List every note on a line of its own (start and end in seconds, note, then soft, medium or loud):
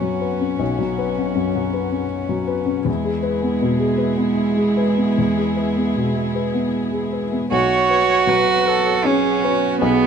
0.00 0.56 B1 soft
0.00 0.63 F#2 soft
0.00 0.63 F#3 soft
0.00 2.84 B3 soft
0.00 0.41 C#4 soft
0.00 2.84 C#4 soft
0.00 2.89 C#4 soft
0.00 2.84 F#4 soft
0.00 0.21 B4 soft
0.21 0.52 B4 soft
0.41 0.72 C#4 soft
0.59 2.83 B1 soft
0.79 1.09 F#3 soft
0.98 1.29 B4 soft
1.18 1.48 C#4 soft
1.35 1.66 F#2 soft
1.55 1.85 F#3 soft
1.73 2.04 B4 soft
1.92 2.53 C#4 soft
2.29 2.60 F#3 soft
2.47 2.79 B4 soft
2.66 2.86 C#4 soft
2.85 5.12 E2 medium
2.85 7.32 G#3 medium
2.85 7.49 B3 medium
2.85 7.53 E4 soft
2.90 7.53 G#4 medium
3.04 3.35 G#3 soft
3.23 3.54 B4 soft
3.43 3.74 B3 soft
3.61 3.93 B2 soft
3.79 4.11 G#3 soft
3.98 4.30 B4 soft
4.17 4.80 B3 soft
4.57 4.89 G#3 soft
4.77 5.09 B4 soft
4.97 5.28 B3 soft
5.18 7.48 E2 soft
5.37 5.68 G#3 soft
5.56 5.88 B4 soft
5.76 6.07 B3 soft
5.96 6.27 B2 soft
6.15 6.46 G#3 soft
6.35 6.66 B4 soft
6.54 7.17 B3 soft
6.92 7.24 G#3 soft
7.12 7.44 B4 soft
7.32 7.52 B3 soft
7.51 9.79 B1 medium
7.51 10.07 B3 medium
7.51 9.07 F#4 loud
7.51 10.07 F#4 medium
7.51 8.30 C#5 medium
7.51 10.07 C#5 medium
7.90 8.52 B4 medium
8.27 8.90 F#3 medium
8.27 8.70 B4 medium
8.67 9.08 A4 medium
8.67 9.29 B4 medium
9.05 9.67 C#4 medium
9.05 9.82 C#4 loud
9.05 9.46 G#4 medium
9.44 9.85 F#4 medium
9.44 10.06 B4 medium
9.82 10.07 B1 medium
9.82 10.07 B3 loud
9.82 10.07 G#4 loud